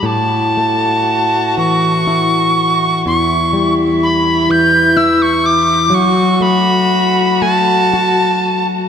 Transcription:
<<
  \new Staff \with { instrumentName = "Tin whistle" } { \time 6/8 \key a \mixolydian \tempo 4. = 40 a''4. cis'''4. | cis'''8. r16 b''8 g'''8 e'''16 cis'''16 d'''8 | cis'''8 b''4 a''4~ a''16 r16 | }
  \new Staff \with { instrumentName = "Cello" } { \time 6/8 \key a \mixolydian fis'2. | e'2. | fis'2. | }
  \new Staff \with { instrumentName = "Nylon-string guitar" } { \clef bass \time 6/8 \key a \mixolydian a,8 a4 e8 e'4 | e,8 g4 e8 e'4 | fis8 a4 a8 fis'4 | }
>>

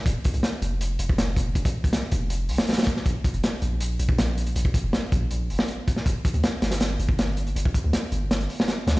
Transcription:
<<
  \new Staff \with { instrumentName = "808-style bass" } { \clef bass \time 4/4 \key f \dorian \tempo 4 = 160 f,,16 r8 c,16 r8 f,,4 f,,4. | f,,16 r8 c,16 r8 f,,4 c,16 r4 r16 | bes,,16 r8 f,,16 r8 bes,,4 bes,,4. | bes,,16 r8 f,,16 r8 bes,,4 f,,16 r4 r16 |
g,,16 r8 d,16 r8 g,,4 g,,4. | g,,16 r8 d,16 r8 g,,4 r4 d,16 r16 | }
  \new DrumStaff \with { instrumentName = "Drums" } \drummode { \time 4/4 <hh bd>8 <hh bd>16 hh16 <hh sn>8 hh8 hh8 hh16 bd16 <hh sn>8 <hh bd>8 | <hh bd>16 <hh bd>8 <hh bd>16 <hh sn>8 <hh bd>8 hh8 hho16 sn16 <hh sn>32 <hh sn>32 <hh sn>32 <hh sn>32 <hh bd>16 sn16 | <hh bd>8 <hh bd>16 hh16 <hh sn>8 hh8 hh8 hh16 bd16 <hh sn>8 hh16 hh16 | hh16 bd16 <hh bd>8 <hh sn>8 <hh bd>8 hh8 hho16 sn16 hh8 <hh bd>16 sn16 |
<hh bd>8 <hh bd>16 hh16 <hh sn>8 <hh sn>16 <hh sn>16 <hh sn>8 hh16 bd16 <hh sn>8 hh16 hh16 | hh16 bd16 <hh bd>8 <hh sn>8 hh8 <hh sn>16 hh16 hho16 sn16 <hh sn>8 <hh sn>8 | }
>>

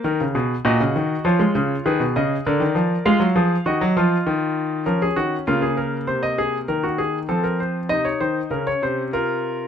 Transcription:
<<
  \new Staff \with { instrumentName = "Grand piano" } { \time 4/4 \key ees \minor \tempo 4 = 99 << { bes'4 ees''4 des''4 ces''8 ees''8 | d''4 f''4 ees''2 | bes'16 aes'16 ges'8 f'16 aes'16 bes'8 c''16 ees''16 aes'8 bes'16 ges'16 aes'8 | a'16 bes'16 c''8 ees''16 des''16 c''8 bes'16 des''16 c''8 bes'4 | } \\ { r8 aes'8 ges'4 f'4 aes'4 | bes'4 f'8 aes'8 ges'8 f'4. | des'4 bes2. | c'4 ees'4 des'4 f'4 | } >> }
  \new Staff \with { instrumentName = "Grand piano" } { \clef bass \time 4/4 \key ees \minor ees16 des16 ces8 bes,16 des16 ees8 f16 aes16 des8 ees16 ces16 des8 | d16 ees16 f8 aes16 ges16 f8 ees16 ges16 f8 ees4 | f8 ees8 des4 c4 ees4 | f4 c8 ees8 des8 c4. | }
>>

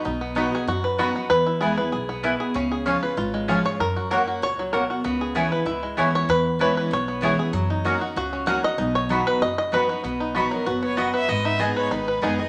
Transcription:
<<
  \new Staff \with { instrumentName = "Fiddle" } { \time 4/4 \key b \major \tempo 4 = 192 r1 | r1 | r1 | r1 |
r1 | r1 | r1 | r1 |
r4. ais'8 b'8 cis''8 dis''8 e''8 | dis''8 e''8 dis''8 cis''8 b'4. dis''8 | }
  \new Staff \with { instrumentName = "Mandolin" } { \time 4/4 \key b \major r4 <b fis' dis'' b''>8 r4. <b fis' dis'' b''>8 r8 | r4 <b e' b' gis''>8 r4. <b e' b' gis''>8 r8 | r4 <cis' eis' cis'' gis''>8 r4. <cis' eis' cis'' gis''>8 r8 | r4 <ais fis' cis'' fis''>8 r4. <ais fis' cis'' fis''>8 r8 |
r4 <b e' cis'' gis''>8 r4. <b e' cis'' gis''>8 r8 | r4 <b e' cis'' gis''>8 r4. <b e' cis'' gis''>8 r8 | r4 <cis' fis' dis'' ais''>8 r4. <cis' fis' dis'' ais''>8 r8 | r4 <b fis' dis'' b''>8 r4. <b fis' dis'' b''>8 r8 |
r4 <b fis' dis'' b''>8 r4. <b fis' dis'' b''>8 r8 | r4 <b gis' dis'' gis''>8 r4. <b gis' dis'' gis''>8 r8 | }
  \new Staff \with { instrumentName = "Five-string banjo" } { \time 4/4 \key b \major << { r4. gis'8 fis'4 fis'4 | b'4 gis'4. r4. | r2. r8 cis''8 | ais'4 ais'4 cis''4 ais'4~ |
ais'8 r2. cis''8 | b'4 b'4 cis''4 gis'4~ | gis'8 r4. fis'4 fis''8 dis''8~ | dis''8 cis''8 r8 b'8 dis''8 dis''8 b'4 |
r1 | r1 | } \\ { dis'8 b8 dis'4. b'4 b8 | r8 e'4 b'8 gis'8 b8 e'8 gis'8 | cis'8 gis'8 cis'8 b'8 eis'8 gis8 gis'4 | r8 fis'4 fis'4 fis4 fis'8 |
b8 gis'8 b8 b'8 e'8 gis8 gis'4 | r4. b'4 b4 gis'8 | fis8 dis'8 fis'8 fis'4 cis'4. | dis'4 dis'4. r4 b8 |
b8 dis'8 fis'8 fis8 fis'8 b8 fis'8 b'8 | b8 dis'8 gis'8 b'8 dis'8 b'8 dis'8 gis'8 | } >> }
  \new Staff \with { instrumentName = "Steel-string acoustic guitar" } { \time 4/4 \key b \major << { r4 <fis b dis' fis'>8 <dis' fis'>8 r4 <fis b dis' fis'>8 <dis' fis'>8 | r4 <e gis b e'>8 <b e'>8 r2 | r4 <eis gis cis' eis'>8 <cis' eis'>8 r4 <eis gis cis' eis'>8 <cis' eis'>8 | r4 <fis ais cis' fis'>4 r2 |
r4 <e b cis' e'>8 <cis' e'>8 r4 <e b cis' e'>4 | r4 <e gis cis' e'>4 r4 <e gis cis' e'>8 <cis' e'>8 | r4 <fis ais dis' fis'>8 <dis' fis'>8 r4 <fis ais dis' fis'>8 <dis' fis'>8 | r4 <fis b dis' fis'>4 r4 <fis b dis' fis'>8 <dis' fis'>8 |
r4 <fis b dis' fis'>8 <dis' fis'>8 r2 | r4 <gis b dis' gis'>4 r4 <gis b dis' gis'>8 <dis' gis'>8 | } \\ { b,2 fis,2 | e,2 ais,4 b,4 | cis2 gis,2 | fis,2 ais,4 b,4 |
cis2 gis,2 | e,2 b,2 | fis2 cis2 | b,2 fis,2 |
b,2 b,4 fis,4 | gis,2 dis2 | } >> }
  \new Staff \with { instrumentName = "Upright bass" } { \clef bass \time 4/4 \key b \major b,,2 fis,2 | e,2 b,,2 | cis,2 gis,,2 | fis,2 cis,2 |
cis,2 cis,4 dis,4 | e,2 b,,2 | fis,2 cis,2 | b,,2 fis,,2 |
b,,2 fis,,2 | gis,,2 gis,,4 fis,,4 | }
>>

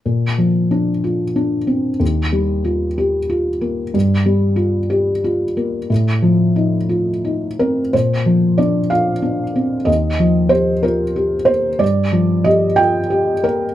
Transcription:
\new Staff \with { instrumentName = "Felt piano" } { \time 6/8 \key bes \major \tempo 4. = 61 << { r2. | r2. | r2. | r2 r8 bes'8 |
c''4 d''8 f''4. | ees''4 c''8 bes'4 c''8 | d''4 ees''8 g''4 bes'8 | } \\ { bes,8 f8 d'8 f'8 d'8 c'8 | ees,8 g8 f'8 g'8 f'8 bes8 | g,8 g8 f'8 g'8 f'8 bes8 | a,8 f8 ees'8 f'8 ees'8 c'8 |
bes,8 f8 d'8 f'8 d'8 c'8 | ees,8 f8 g'8 f'8 g'8 bes8 | g,8 f8 g'8 f'8 g'8 bes8 | } >> }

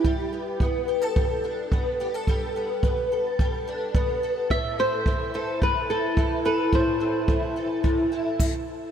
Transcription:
<<
  \new Staff \with { instrumentName = "Nylon-string guitar" } { \time 4/4 \key g \major \tempo 4 = 108 r1 | r1 | e''8 c''4 c''8 b'8 a'4 b'8 | c''2. r4 | }
  \new Staff \with { instrumentName = "Twelve-string acoustic guitar" } { \time 4/4 \key g \major g8 b8 b8 g'16 a'16 g8 d'8 b8 g'16 a'16 | g8 b8 b8 a'8 g8 d'8 b8 a'8 | a,8 c'8 e8 a'8 a,8 e'8 e8 a'8 | a,8 c'8 e8 a'8 a,8 e'8 r4 | }
  \new DrumStaff \with { instrumentName = "Drums" } \drummode { \time 4/4 bd4 bd4 bd4 bd4 | bd4 bd4 bd4 bd4 | bd4 bd4 bd4 bd4 | bd4 bd4 bd4 <cymc bd>4 | }
>>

